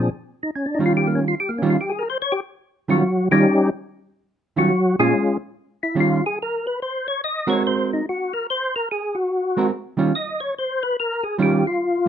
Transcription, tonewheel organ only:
0.00 0.10 D4 medium
0.00 0.10 G#4 medium
0.43 0.51 D#4 medium
0.55 0.67 C#4 medium
0.66 0.79 D4 medium
0.75 0.84 D#4 medium
0.86 0.93 F4 medium
0.97 1.08 G4 medium
1.07 1.20 A#3 medium
1.15 1.25 C#4 medium
1.28 1.35 F4 medium
1.40 1.51 G4 loud
1.49 1.62 A#3 medium
1.58 1.67 C#4 medium
1.70 1.77 F4 medium
1.81 1.92 G4 medium
1.89 2.03 G#4 medium
1.99 2.08 A#4 medium
2.10 2.18 C5 medium
2.22 2.34 C#5 medium
2.32 2.40 G4 medium
2.90 3.29 F#3 medium
2.90 3.28 F#4 medium
3.31 3.70 G3 medium
3.31 3.70 C#4 medium
3.31 3.70 D#4 medium
3.31 3.70 G4 loud
4.58 4.96 F#3 medium
4.58 4.96 F#4 medium
4.99 5.37 G#3 medium
4.99 5.38 C#4 medium
4.99 5.38 F4 medium
4.99 5.37 G#4 medium
5.83 5.96 E4 medium
6.00 6.24 F4 medium
6.26 6.39 G#4 medium
6.42 6.66 A#4 medium
6.67 6.80 B4 medium
6.82 7.07 C5 medium
7.08 7.21 C#5 loud
7.24 7.49 D#5 medium
7.50 7.63 C#5 medium
7.67 7.91 C5 medium
7.93 8.06 D#4 medium
8.09 8.33 F#4 medium
8.34 8.47 A#4 medium
8.50 8.74 C5 loud
8.76 8.89 A#4 loud
8.91 9.16 G#4 medium
9.15 9.67 F#4 loud
10.15 10.40 D#5 medium
10.40 10.54 C#5 loud
10.58 10.83 C5 medium
10.83 10.97 B4 loud
11.00 11.24 A#4 medium
11.23 11.38 G#4 loud
11.43 11.66 G4 medium
11.67 12.08 F4 loud

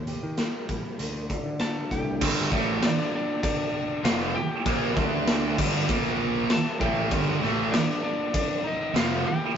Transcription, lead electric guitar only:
1.61 1.90 A4 medium
1.61 1.89 A5 medium
1.92 2.80 G4 medium
1.92 2.56 G5 medium
2.56 2.86 F#5 medium
2.85 3.13 D4 medium
2.85 3.13 D5 medium
3.15 3.43 D4 medium
3.15 3.42 D5 medium
3.43 4.01 D4 medium
3.43 4.01 D5 medium
4.05 4.34 F4 medium
4.05 4.35 F5 medium
4.34 5.54 G4 medium
4.34 5.54 G5 medium
6.51 6.79 A4 medium
6.51 6.80 A5 loud
6.80 7.68 G4 medium
6.80 7.75 G5 loud
7.72 8.01 D4 medium
7.72 8.03 D5 medium
8.03 8.31 D4 medium
8.03 8.35 D5 medium
8.34 8.62 D4 medium
8.34 8.66 D5 medium
8.64 8.93 D#4 medium
8.64 8.94 D#5 medium
8.95 9.23 F4 medium
8.95 9.27 F5 medium
9.25 9.57 G4 medium
9.25 9.57 G5 medium

